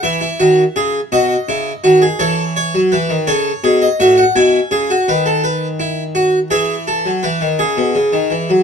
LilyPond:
<<
  \new Staff \with { instrumentName = "Harpsichord" } { \time 12/8 \key e \mixolydian \tempo 4. = 56 << { e''4. dis''4. cis''4. cis''8. dis''16 e''16 fis''16 | gis''2. e''2. | } \\ { e'16 e'16 fis'8 gis'8 fis'8 e'8 fis'16 gis'16 a'8 cis''8 b'8 a'8 gis'8 fis'8 | e'8 gis'16 fis'16 b'16 a'16 b'8 e'8 fis'8 gis'8 a'8 b'8 gis'4. | } >> }
  \new Staff \with { instrumentName = "Harpsichord" } { \clef bass \time 12/8 \key e \mixolydian e8 dis8 cis8 b,8 cis8 dis8 e8. fis16 e16 dis16 cis8 b,8 a,8 | b,8 cis8 dis2 e8. fis16 e16 dis16 cis16 b,16 cis16 dis16 e16 fis16 | }
>>